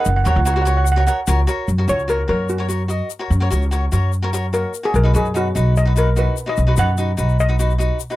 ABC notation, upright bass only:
X:1
M:4/4
L:1/16
Q:1/4=147
K:F#
V:1 name="Upright bass" clef=bass
F,,,2 D,, C,,8 z C,,2 z2 | F,,2 C,,4 F,,8 z2 | F,,2 C,,4 F,,8 z2 | B,,,2 F,,4 B,,,8 z2 |
B,,,2 F,,4 B,,,8 z2 |]